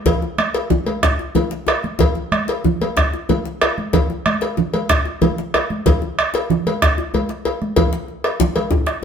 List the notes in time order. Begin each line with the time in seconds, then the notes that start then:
0.06 bombo rim, bombo low, cowbell, djembe slap, djembe bass, low conga
0.22 djembe tone
0.38 bombo rim, high conga
0.54 cowbell, djembe slap
0.70 djembe tone, low conga, djembe bass
0.86 cowbell, high conga
1.03 bombo rim, bombo low, djembe slap
1.19 djembe tone
1.35 cowbell, high conga, djembe bass, low conga
1.51 djembe slap
1.67 bombo rim, cowbell, djembe tone
1.83 djembe slap, high conga
1.99 bombo rim, bombo low, cowbell, djembe slap, djembe bass, low conga
2.15 djembe tone
2.32 bombo rim, high conga
2.48 cowbell, djembe slap
2.64 djembe tone, djembe bass, low conga
2.81 cowbell, high conga
2.97 bombo rim, bombo low, djembe slap
3.13 djembe tone
3.29 cowbell, high conga, djembe bass, low conga
3.45 djembe slap
3.61 bombo rim, cowbell, djembe tone
3.77 djembe slap, high conga
3.93 bombo rim, bombo low, cowbell, djembe slap, djembe bass, low conga
4.10 djembe tone
4.26 bombo rim, high conga
4.41 cowbell, djembe slap
4.57 djembe tone, low conga
4.74 cowbell, high conga
4.89 bombo rim, bombo low, djembe slap
5.05 djembe tone
5.21 cowbell, high conga, djembe bass, low conga
5.38 djembe slap
5.54 bombo rim, cowbell, djembe tone
5.70 djembe slap, high conga
5.86 bombo rim, bombo low, cowbell, djembe slap, djembe bass, low conga
6.02 djembe slap, djembe tone
6.19 bombo rim
6.34 bombo rim, cowbell, djembe slap
6.50 bombo rim, djembe tone, low conga
6.66 cowbell, djembe slap, high conga
6.82 bombo rim, bombo low, djembe slap
6.98 bombo rim, djembe slap, djembe tone
7.14 cowbell, djembe slap, high conga, djembe bass
7.29 bombo rim, djembe slap, high conga
7.45 cowbell, djembe slap, djembe tone
7.62 bombo rim, high conga
7.76 bombo rim, bombo low, cowbell, djembe tone, high conga, djembe bass, low conga
7.93 djembe slap, high conga
8.08 djembe slap
8.24 bombo rim, cowbell
8.40 djembe slap, djembe bass, low conga
8.56 bombo rim, cowbell, high conga
8.71 bombo rim, bombo low, djembe tone, high conga
8.86 bombo rim, djembe slap